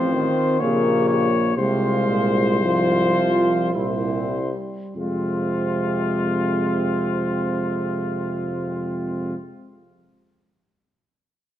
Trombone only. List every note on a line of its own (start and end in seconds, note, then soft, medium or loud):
0.00 0.15 F3 medium
0.14 0.63 D#3 medium
0.61 1.28 C#3 medium
1.56 2.04 C3 medium
2.07 2.62 A#2 medium
2.60 3.15 G#2 medium
3.15 3.75 C3 medium
3.74 4.34 A#2 medium
4.95 9.34 C3 soft